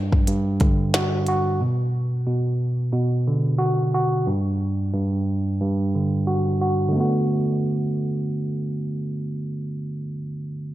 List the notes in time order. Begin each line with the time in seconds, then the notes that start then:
Already playing: G2
0.12 kick
0.27 G2, closed hi-hat
0.60 D3, kick, closed hi-hat
0.94 F#4, snare, closed hi-hat
1.27 F#4, closed hi-hat
1.61 B2
2.27 B2
2.92 B2
3.27 D3
3.58 F#4
3.94 F#4
4.27 G2
4.94 G2
5.61 G2
5.95 D3
6.27 F#4
6.61 F#4
6.88 D3
6.92 A3 B3
7.00 F#4